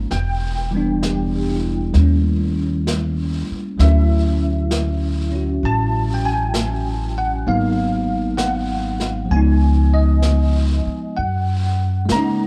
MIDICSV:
0, 0, Header, 1, 5, 480
1, 0, Start_track
1, 0, Tempo, 917431
1, 60, Time_signature, 4, 2, 24, 8
1, 3420, Tempo, 927357
1, 6490, End_track
2, 0, Start_track
2, 0, Title_t, "Tine electric piano"
2, 0, Program_c, 0, 4
2, 0, Control_c, 0, 64, 127
2, 0, Note_on_c, 0, 53, 42
2, 0, Note_on_c, 0, 56, 34
2, 0, Note_on_c, 0, 58, 32
2, 0, Note_on_c, 0, 60, 40
2, 0, Note_on_c, 0, 61, 40
2, 0, Note_on_c, 0, 63, 46
2, 0, Note_on_c, 0, 80, 67
2, 55, Note_off_c, 0, 53, 0
2, 57, Note_off_c, 0, 56, 0
2, 60, Note_on_c, 0, 79, 75
2, 61, Note_off_c, 0, 58, 0
2, 63, Note_off_c, 0, 60, 0
2, 64, Note_off_c, 0, 61, 0
2, 67, Note_off_c, 0, 63, 0
2, 67, Control_c, 0, 64, 0
2, 72, Note_off_c, 0, 80, 0
2, 163, Control_c, 0, 64, 127
2, 371, Note_on_c, 0, 52, 46
2, 380, Note_on_c, 0, 55, 40
2, 390, Note_on_c, 0, 59, 43
2, 401, Note_on_c, 0, 62, 50
2, 519, Note_off_c, 0, 79, 0
2, 544, Note_on_c, 0, 67, 40
2, 782, Note_on_c, 0, 64, 39
2, 923, Note_off_c, 0, 67, 0
2, 1005, Note_off_c, 0, 55, 0
2, 1012, Note_on_c, 0, 55, 42
2, 1013, Note_off_c, 0, 52, 0
2, 1021, Note_on_c, 0, 57, 35
2, 1023, Note_off_c, 0, 59, 0
2, 1027, Control_c, 0, 64, 0
2, 1028, Note_off_c, 0, 62, 0
2, 1028, Note_on_c, 0, 58, 36
2, 1038, Note_on_c, 0, 61, 42
2, 1113, Control_c, 0, 64, 127
2, 1120, Note_off_c, 0, 64, 0
2, 1975, Note_off_c, 0, 55, 0
2, 1975, Note_off_c, 0, 57, 0
2, 1976, Note_on_c, 0, 54, 43
2, 1982, Note_on_c, 0, 57, 41
2, 1983, Note_off_c, 0, 58, 0
2, 1984, Note_off_c, 0, 61, 0
2, 1985, Control_c, 0, 64, 0
2, 1990, Note_on_c, 0, 76, 80
2, 1991, Note_on_c, 0, 61, 39
2, 1999, Note_on_c, 0, 64, 51
2, 2066, Control_c, 0, 64, 127
2, 2767, Note_off_c, 0, 76, 0
2, 2776, Note_off_c, 0, 61, 0
2, 2783, Note_on_c, 0, 61, 36
2, 2800, Note_on_c, 0, 66, 40
2, 2958, Note_on_c, 0, 81, 84
2, 3205, Note_off_c, 0, 81, 0
2, 3212, Note_on_c, 0, 79, 62
2, 3262, Note_off_c, 0, 79, 0
2, 3272, Note_on_c, 0, 80, 76
2, 3726, Note_off_c, 0, 80, 0
2, 3753, Note_on_c, 0, 78, 70
2, 3895, Note_off_c, 0, 54, 0
2, 3898, Note_off_c, 0, 57, 0
2, 3899, Note_off_c, 0, 61, 0
2, 3901, Note_on_c, 0, 54, 50
2, 3902, Note_on_c, 0, 58, 46
2, 3904, Control_c, 0, 64, 0
2, 3906, Note_off_c, 0, 64, 0
2, 3906, Note_off_c, 0, 78, 0
2, 3906, Note_on_c, 0, 63, 50
2, 3907, Note_on_c, 0, 59, 47
2, 3908, Note_off_c, 0, 66, 0
2, 3908, Note_on_c, 0, 77, 76
2, 4002, Control_c, 0, 64, 127
2, 4371, Note_on_c, 0, 78, 73
2, 4393, Note_off_c, 0, 77, 0
2, 4825, Note_on_c, 0, 53, 44
2, 4844, Note_on_c, 0, 56, 39
2, 4854, Note_off_c, 0, 54, 0
2, 4854, Note_off_c, 0, 58, 0
2, 4856, Note_off_c, 0, 63, 0
2, 4857, Note_off_c, 0, 59, 0
2, 4857, Note_on_c, 0, 80, 69
2, 4859, Control_c, 0, 64, 0
2, 4863, Note_on_c, 0, 59, 42
2, 4865, Note_off_c, 0, 78, 0
2, 4882, Note_on_c, 0, 63, 52
2, 4962, Control_c, 0, 64, 127
2, 5180, Note_on_c, 0, 75, 57
2, 5189, Note_off_c, 0, 80, 0
2, 5641, Note_off_c, 0, 75, 0
2, 5804, Note_off_c, 0, 53, 0
2, 5813, Note_off_c, 0, 56, 0
2, 5816, Note_on_c, 0, 78, 69
2, 5823, Note_off_c, 0, 59, 0
2, 5823, Control_c, 0, 64, 0
2, 5832, Note_off_c, 0, 63, 0
2, 5914, Control_c, 0, 64, 127
2, 6276, Note_on_c, 0, 56, 49
2, 6297, Note_on_c, 0, 58, 45
2, 6309, Note_on_c, 0, 82, 75
2, 6313, Note_off_c, 0, 78, 0
2, 6318, Note_on_c, 0, 61, 43
2, 6334, Note_on_c, 0, 63, 52
2, 6490, Note_off_c, 0, 56, 0
2, 6490, Note_off_c, 0, 58, 0
2, 6490, Note_off_c, 0, 61, 0
2, 6490, Note_off_c, 0, 63, 0
2, 6490, Note_off_c, 0, 82, 0
2, 6490, End_track
3, 0, Start_track
3, 0, Title_t, "Upright bass"
3, 0, Program_c, 1, 32
3, 63, Note_on_c, 1, 28, 63
3, 1000, Note_off_c, 1, 28, 0
3, 1019, Note_on_c, 1, 39, 74
3, 1803, Note_off_c, 1, 39, 0
3, 1985, Note_on_c, 1, 38, 72
3, 2920, Note_off_c, 1, 38, 0
3, 2946, Note_on_c, 1, 33, 72
3, 3880, Note_off_c, 1, 33, 0
3, 3903, Note_on_c, 1, 32, 64
3, 4834, Note_off_c, 1, 32, 0
3, 4855, Note_on_c, 1, 37, 74
3, 5641, Note_off_c, 1, 37, 0
3, 5824, Note_on_c, 1, 42, 63
3, 6281, Note_off_c, 1, 42, 0
3, 6303, Note_on_c, 1, 49, 59
3, 6490, Note_off_c, 1, 49, 0
3, 6490, End_track
4, 0, Start_track
4, 0, Title_t, "Muted upright bass strokes"
4, 1836, Note_on_c, 9, 29, 33
4, 1888, Note_off_c, 9, 29, 0
4, 5661, Note_on_c, 9, 29, 33
4, 5712, Note_off_c, 9, 29, 0
4, 6490, End_track
5, 0, Start_track
5, 0, Title_t, "Drums"
5, 56, Note_on_c, 9, 25, 32
5, 56, Note_on_c, 9, 38, 27
5, 108, Note_off_c, 9, 38, 0
5, 537, Note_off_c, 9, 25, 0
5, 537, Note_on_c, 9, 25, 33
5, 537, Note_on_c, 9, 38, 40
5, 537, Note_on_c, 9, 44, 56
5, 589, Note_off_c, 9, 38, 0
5, 589, Note_off_c, 9, 44, 0
5, 1014, Note_off_c, 9, 25, 0
5, 1014, Note_on_c, 9, 25, 29
5, 1014, Note_on_c, 9, 38, 24
5, 1066, Note_off_c, 9, 38, 0
5, 1502, Note_off_c, 9, 25, 0
5, 1502, Note_on_c, 9, 25, 31
5, 1502, Note_on_c, 9, 38, 36
5, 1502, Note_on_c, 9, 44, 45
5, 1554, Note_off_c, 9, 38, 0
5, 1554, Note_off_c, 9, 44, 0
5, 1984, Note_off_c, 9, 25, 0
5, 1984, Note_on_c, 9, 25, 32
5, 1984, Note_on_c, 9, 38, 26
5, 2037, Note_off_c, 9, 38, 0
5, 2463, Note_off_c, 9, 25, 0
5, 2463, Note_on_c, 9, 25, 30
5, 2463, Note_on_c, 9, 38, 40
5, 2463, Note_on_c, 9, 44, 53
5, 2515, Note_off_c, 9, 38, 0
5, 2515, Note_off_c, 9, 44, 0
5, 2944, Note_off_c, 9, 25, 0
5, 2944, Note_on_c, 9, 25, 34
5, 3421, Note_off_c, 9, 25, 0
5, 3421, Note_on_c, 9, 25, 34
5, 3421, Note_on_c, 9, 38, 39
5, 3421, Note_on_c, 9, 44, 50
5, 3472, Note_off_c, 9, 38, 0
5, 3472, Note_off_c, 9, 44, 0
5, 3896, Note_off_c, 9, 25, 0
5, 3896, Note_on_c, 9, 25, 34
5, 4373, Note_off_c, 9, 25, 0
5, 4373, Note_on_c, 9, 25, 32
5, 4373, Note_on_c, 9, 38, 40
5, 4373, Note_on_c, 9, 44, 49
5, 4425, Note_off_c, 9, 38, 0
5, 4425, Note_off_c, 9, 44, 0
5, 4694, Note_on_c, 9, 38, 21
5, 4745, Note_off_c, 9, 38, 0
5, 4848, Note_off_c, 9, 25, 0
5, 4848, Note_on_c, 9, 25, 29
5, 5328, Note_off_c, 9, 25, 0
5, 5328, Note_on_c, 9, 25, 34
5, 5328, Note_on_c, 9, 38, 41
5, 5328, Note_on_c, 9, 44, 42
5, 5380, Note_off_c, 9, 38, 0
5, 5380, Note_off_c, 9, 44, 0
5, 5810, Note_off_c, 9, 25, 0
5, 5810, Note_on_c, 9, 25, 31
5, 6293, Note_off_c, 9, 25, 0
5, 6293, Note_on_c, 9, 25, 32
5, 6293, Note_on_c, 9, 38, 41
5, 6293, Note_on_c, 9, 44, 55
5, 6345, Note_off_c, 9, 38, 0
5, 6345, Note_off_c, 9, 44, 0
5, 6490, Note_off_c, 9, 25, 0
5, 6490, End_track
0, 0, End_of_file